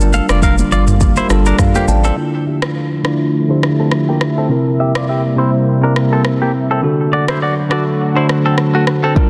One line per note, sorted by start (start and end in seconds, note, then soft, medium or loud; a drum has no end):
0.00 0.21 G1 loud
0.00 2.13 D3 medium
0.00 0.68 G3 medium
0.00 2.15 G3 medium
0.00 2.15 A#3 medium
0.00 0.69 D4 medium
0.00 0.69 F4 medium
0.00 2.15 F4 loud
0.00 0.70 A#4 medium
0.00 shaker medium
0.13 0.26 A4 medium
0.13 0.25 F5 medium
0.13 high conga medium
0.13 shaker medium
0.29 0.63 F1 loud
0.29 0.40 F4 medium
0.29 0.39 D5 medium
0.29 cross-stick loud
0.29 shaker medium
0.42 0.55 A#4 medium
0.42 0.54 F5 medium
0.42 kick medium
0.42 shaker medium
0.58 high conga medium
0.58 shaker medium
0.71 1.19 G1 loud
0.71 0.84 F4 medium
0.71 0.84 D5 medium
0.71 low conga medium
0.71 shaker soft
0.87 mid tom loud
0.87 shaker medium
1.01 kick loud
1.01 low conga medium
1.01 shaker medium
1.16 1.27 E4 medium
1.16 1.27 C5 medium
1.16 high conga medium
1.16 shaker medium
1.28 1.53 G1 loud
1.28 1.73 G3 medium
1.28 1.73 D4 medium
1.28 1.74 F4 medium
1.28 1.60 A4 medium
1.28 1.57 D5 medium
1.28 cross-stick medium
1.28 shaker medium
1.46 1.56 D4 medium
1.46 1.56 A#4 medium
1.46 shaker medium
1.59 1.74 F5 medium
1.59 kick loud
1.59 cross-stick medium
1.59 mid tom loud
1.59 high conga medium
1.59 shaker medium
1.75 1.85 A#3 medium
1.75 1.85 G4 medium
1.75 1.88 C5 medium
1.75 1.87 F5 medium
1.75 high conga medium
1.75 shaker medium
1.88 2.12 A1 loud
1.88 2.03 D5 medium
1.88 2.03 G5 medium
1.88 2.15 A5 medium
1.88 high conga medium
1.88 low conga medium
1.88 shaker medium
2.04 2.14 C4 medium
2.04 2.32 A4 medium
2.04 2.14 A4 medium
2.04 2.32 D5 medium
2.04 shaker soft
2.16 2.80 D3 medium
2.16 4.48 D3 medium
2.16 4.48 F3 medium
2.16 4.48 A3 medium
2.16 2.81 D4 medium
2.16 2.81 E4 medium
2.16 2.82 F4 medium
2.16 6.79 E5 medium
2.47 2.59 G4 medium
2.47 2.58 E5 medium
2.62 2.73 F4 medium
2.62 2.72 D5 medium
2.62 cross-stick loud
2.76 2.88 A4 medium
2.76 2.87 F5 medium
3.03 3.36 D3 medium
3.03 3.36 D4 medium
3.03 3.37 E4 medium
3.03 3.37 F4 medium
3.03 3.17 F4 medium
3.03 3.17 D5 medium
3.03 cross-stick medium
3.48 4.22 D3 medium
3.48 4.22 D4 medium
3.48 4.22 E4 medium
3.48 3.60 E4 medium
3.48 4.23 G4 medium
3.48 3.60 C5 medium
3.63 cross-stick medium
3.80 3.89 C4 medium
3.80 3.89 A4 medium
3.92 cross-stick medium
4.09 4.18 A#3 medium
4.09 4.18 G4 medium
4.21 cross-stick medium
4.38 4.48 C4 medium
4.38 4.47 A4 medium
4.49 5.13 C3 medium
4.49 6.81 C3 medium
4.49 6.81 G3 medium
4.49 6.81 A#3 medium
4.49 5.14 C4 medium
4.49 5.14 E4 medium
4.49 5.15 A#4 medium
4.80 4.92 G4 medium
4.80 4.91 E5 medium
4.95 5.06 F4 medium
4.95 5.05 D5 medium
4.95 cross-stick loud
5.09 5.21 G4 medium
5.09 5.20 E5 medium
5.36 5.69 C3 medium
5.36 5.69 C4 medium
5.36 5.70 E4 medium
5.36 5.50 E4 medium
5.36 5.50 C5 medium
5.36 5.70 C5 medium
5.81 6.55 C3 medium
5.81 6.55 C4 medium
5.81 5.93 D4 medium
5.81 6.56 E4 medium
5.81 5.93 A#4 medium
5.81 6.56 A#4 medium
5.96 cross-stick medium
6.13 6.22 C4 medium
6.13 6.22 A4 medium
6.25 cross-stick medium
6.42 6.51 A#3 medium
6.42 6.51 G4 medium
6.71 6.81 C4 medium
6.71 6.80 A4 medium
6.82 7.47 D3 medium
6.82 9.30 D3 medium
6.82 9.14 F#3 medium
6.82 9.14 A3 medium
6.82 7.47 D4 medium
6.82 9.14 F#4 medium
6.82 7.47 F#4 medium
6.82 7.48 A4 medium
7.13 7.25 F#4 medium
7.13 7.24 D5 medium
7.28 7.39 E4 medium
7.28 7.38 C5 medium
7.28 cross-stick loud
7.42 7.54 F#4 medium
7.42 7.54 D5 medium
7.69 8.02 D3 medium
7.69 8.02 D4 medium
7.69 8.03 F#4 medium
7.69 7.83 F#4 medium
7.69 8.03 A4 medium
7.69 7.83 D5 medium
7.69 cross-stick medium
8.14 8.88 D3 medium
8.14 8.88 D4 medium
8.14 8.26 E4 medium
8.14 8.89 F#4 medium
8.14 8.26 C5 medium
8.14 8.89 C5 medium
8.29 cross-stick medium
8.46 8.55 C4 medium
8.46 8.55 A4 medium
8.58 cross-stick medium
8.75 8.84 A3 medium
8.75 8.84 F#4 medium
8.87 cross-stick medium
9.04 9.13 C4 medium
9.04 9.13 A4 medium
9.15 9.30 G3 medium
9.15 9.30 A#3 medium
9.15 9.30 D4 medium
9.15 9.30 F4 loud
9.15 9.30 F4 medium
9.15 9.30 A#4 medium
9.15 kick loud